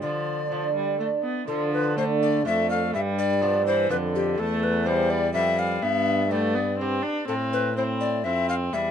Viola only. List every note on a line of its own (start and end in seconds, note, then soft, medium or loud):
0.01 0.45 F3 medium
0.50 0.73 F3 medium
0.74 0.99 G3 medium
0.99 1.07 A3 medium
1.23 1.47 B3 medium
1.48 1.98 F3 medium
1.96 2.44 A3 medium
2.45 2.95 A3 medium
2.94 3.43 G3 medium
3.41 3.66 F3 medium
3.66 3.92 E3 medium
3.90 4.39 D3 medium
4.38 4.88 A3 medium
4.86 5.33 G3 medium
5.34 5.84 G3 medium
5.82 6.26 B3 medium
6.31 6.56 A3 medium
6.54 6.77 B3 medium
6.78 7.04 C4 medium
7.03 7.27 D4 medium
7.28 7.73 C4 medium
7.76 8.24 C4 medium
8.25 8.75 C4 medium
8.73 8.91 G3 medium